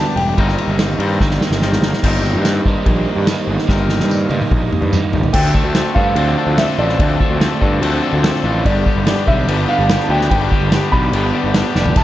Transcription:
Already playing: overdriven electric guitar G2 D3 G3 B3 D4, clean electric guitar G2 D3 G3 B3 D4 G4, string machine G4 D5 B5 D6, upright piano A5
0.16 picked electric bass E1, upright piano G5, ride
0.37 picked electric bass G1, overdriven electric guitar G2 D#3 G3 A#3 D#4, clean electric guitar G3 C4 D#4 A#4, string machine C5 A#5 D#6, kick, ride
0.48 snare
0.58 ride
0.68 picked electric bass G1
0.79 snare, ride
0.99 picked electric bass G2, clean electric guitar G3 C4 D#4 A#4, ride
1.20 picked electric bass G1, overdriven electric guitar G2 D#3 G3 A#3 D#4, kick, snare
1.31 snare
1.41 snare
1.51 picked electric bass G1, snare
1.62 clean electric guitar G3 C4 D#4 A#4, snare
1.73 snare
1.81 picked electric bass G1, snare
1.93 snare
2.01 picked electric bass G1, overdriven electric guitar G2 D#3, clean electric guitar G3 C4, string machine G4 C5 A#5 D#6, kick, crash
2.05 overdriven electric guitar G3 A#3 D#4, clean electric guitar D#4 A#4
2.24 snare
2.34 picked electric bass G2
2.45 snare, tambourine, crash
2.66 picked electric bass G2, overdriven electric guitar G2 D#3 G3 A#3 D#4, kick
2.86 picked electric bass A#1, kick, crash
3.16 picked electric bass G2
3.27 overdriven electric guitar G2 D#3 G3 A#3 D#4, snare, tambourine, crash
3.48 picked electric bass G1
3.59 snare
3.67 picked electric bass G1, overdriven electric guitar G2 D#3 G3 A#3 D#4, clean electric guitar G3 C4 D#4, kick, snare
3.71 clean electric guitar A#4
3.89 snare
3.99 picked electric bass G2, snare
4.10 high tom, tambourine
4.29 picked electric bass G2, overdriven electric guitar G2 D#3 G3 A#3 D#4, high tom
4.41 mid tom
4.51 picked electric bass A#1, kick, mid tom
4.73 mid tom
4.82 picked electric bass G2, mid tom
4.92 overdriven electric guitar G2 D#3 G3 A#3 D#4, mid tom, tambourine
5.12 picked electric bass G1, floor tom
5.23 floor tom
5.33 picked electric bass D2, clean electric guitar D3 F3 C4 D4 A4, overdriven electric guitar D3, string machine F4 C5 A5 D6, upright piano G5, kick, crash
5.54 overdriven electric guitar A3, clean electric guitar C4 D4 A4, kick
5.64 picked electric bass D2
5.75 clean electric guitar F3 C4 D4 A4, overdriven electric guitar A3, snare, crash
5.95 picked electric bass G2, overdriven electric guitar D3, clean electric guitar D3 F3 C4 D4 A4, upright piano F5, kick
6.16 picked electric bass D2, clean electric guitar F3 C4 D4 A4, overdriven electric guitar C4, crash
6.38 clean electric guitar D3 F3 C4 D4 A4, overdriven electric guitar F4
6.47 picked electric bass D2
6.58 clean electric guitar F3 C4 D4 A4, overdriven electric guitar C4, upright piano E5, snare, crash
6.69 snare
6.79 picked electric bass A1, clean electric guitar C4 D4 A4, overdriven electric guitar F4, upright piano D5
6.89 snare
6.99 picked electric bass D2, overdriven electric guitar D3, clean electric guitar D3 F3 C4 D4 A4, upright piano D5, kick, crash
7.20 overdriven electric guitar A3, clean electric guitar C4 D4 A4, kick
7.30 picked electric bass D2
7.41 clean electric guitar F3 C4 D4 A4, overdriven electric guitar A3, snare, crash
7.61 picked electric bass G2, overdriven electric guitar D3, clean electric guitar D3 F3 C4 D4 A4, kick
7.81 picked electric bass D2, clean electric guitar F3 C4 D4 A4, overdriven electric guitar C4, crash
8.02 clean electric guitar D3 F3 C4 D4 A4, overdriven electric guitar F4
8.13 picked electric bass D2
8.23 clean electric guitar F3 C4 D4 A4, overdriven electric guitar C4, snare, crash
8.35 snare
8.44 picked electric bass A1, clean electric guitar C4 D4 A4, overdriven electric guitar F4
8.64 picked electric bass G1, overdriven electric guitar G2, clean electric guitar G2 D3 G3 B3 D4 G4, string machine G4 D5 B5, upright piano D5, kick, crash
8.86 overdriven electric guitar D3, clean electric guitar G3 B3 D4 G4, kick
8.96 picked electric bass G1
9.06 clean electric guitar G3 B3 D4 G4, overdriven electric guitar G3, snare, crash
9.27 picked electric bass B1, clean electric guitar G2 D3 G3 B3 D4 G4, overdriven electric guitar D3, upright piano E5, kick
9.47 picked electric bass G1, clean electric guitar G3 B3 D4 G4, overdriven electric guitar B3, crash
9.69 clean electric guitar G2 D3 G3 B3 D4 G4, overdriven electric guitar D4, upright piano F5
9.79 picked electric bass G1
9.89 clean electric guitar G3 B3 D4 G4, overdriven electric guitar B3, snare, crash
10.00 upright piano A5, snare
10.09 picked electric bass D2, clean electric guitar G3 B3 D4 G4, overdriven electric guitar D4, upright piano G5
10.21 snare
10.30 picked electric bass G1, clean electric guitar G2 D3 G3 B3 D4 G4, overdriven electric guitar G2, upright piano G5, kick, crash
10.51 overdriven electric guitar D3, clean electric guitar G3 B3 D4 G4, kick
10.61 picked electric bass G1
10.72 clean electric guitar G3 B3 D4 G4, overdriven electric guitar G3, snare, crash
10.92 picked electric bass B1, clean electric guitar G2 D3 G3 B3 D4 G4, overdriven electric guitar D3, upright piano B5, kick
11.13 picked electric bass G1, clean electric guitar G3 B3 D4 G4, overdriven electric guitar B3, crash
11.34 clean electric guitar G2 D3 G3 B3 D4 G4, overdriven electric guitar D4
11.44 picked electric bass G1
11.54 clean electric guitar G3 B3 D4 G4, overdriven electric guitar B3, snare, crash
11.75 picked electric bass F1, clean electric guitar G3 B3 D4 G4, overdriven electric guitar D4, snare
11.86 floor tom
11.95 picked electric bass E1, clean electric guitar E2 B2 E3 G3 B3 E4, overdriven electric guitar E3, string machine G4 E5 E6, upright piano A5, kick, tambourine, crash

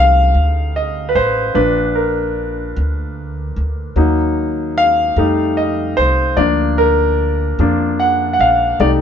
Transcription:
Already playing: upright bass C2, grand piano G3 A3 D#4 F5
0.35 upright bass D2
0.76 grand piano D#5
1.09 grand piano B4
1.15 upright bass A1, grand piano C5
1.54 upright bass A#1, grand piano A#2 F3 D4 B4
1.95 grand piano A#4
2.76 upright bass D2
3.56 upright bass D2
3.96 upright bass D#2, grand piano F#3 A#3 D#4
4.78 grand piano F5
5.16 upright bass F2, grand piano G3 A3 D#4
5.57 grand piano D#5
5.97 upright bass C2, grand piano C5
6.37 upright bass D2, grand piano F3 A#3 D4 D5
6.78 grand piano A#4
7.59 upright bass F2, grand piano F3 A#3 D4
8.00 grand piano F#5
8.33 grand piano F#5
8.39 upright bass A#1, grand piano F5
8.80 upright bass C2, grand piano G3 A3 D#4 D5

